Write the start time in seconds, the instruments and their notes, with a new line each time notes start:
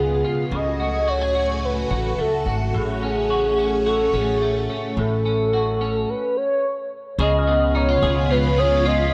Already playing: upright bass C#2, string machine C#3 G#3 B3 F4, clean electric guitar C#3 B3 F4 G#4, soft synth lead G#4
0.24 clean electric guitar F4
0.51 upright bass C#2, clean electric guitar C#3, string machine A3 F#4 G#5, soft synth lead D#5
0.80 clean electric guitar F#4
1.08 clean electric guitar F#4, soft synth lead C#5
1.21 clean electric guitar G#4
1.35 clean electric guitar F#4
1.65 soft synth lead B4
1.90 upright bass A1, clean electric guitar F#4
2.18 upright bass C#2, clean electric guitar A3, soft synth lead A4
2.46 upright bass G#1, clean electric guitar F#4
2.74 upright bass A1, clean electric guitar A2, string machine A3 C#4, soft synth lead G#4
3.03 clean electric guitar C#4
3.30 clean electric guitar F#4
3.59 clean electric guitar C#4
3.86 clean electric guitar F#4, soft synth lead A4
4.13 upright bass A1, clean electric guitar C#4, soft synth lead G#4
4.42 clean electric guitar A3
4.70 clean electric guitar C#4
4.97 upright bass A1, clean electric guitar A2, soft synth lead A4
5.25 clean electric guitar C#4
5.53 clean electric guitar F#4
5.81 clean electric guitar C#4
6.09 soft synth lead B4
6.37 soft synth lead C#5
7.19 upright bass C#2, clean electric guitar C#3 G#4, string machine C#3 G#3 B3 F4, soft synth lead D#5, glockenspiel C#6
7.39 glockenspiel F6
7.47 clean electric guitar B3
7.75 clean electric guitar D#4, soft synth lead C#5
7.89 clean electric guitar F4
8.02 upright bass C#2, clean electric guitar G#4
8.31 clean electric guitar F4, soft synth lead B4
8.58 clean electric guitar G#4, soft synth lead C#5, glockenspiel D#6
8.77 glockenspiel G#6
8.85 clean electric guitar F4, soft synth lead D#5
8.98 glockenspiel B6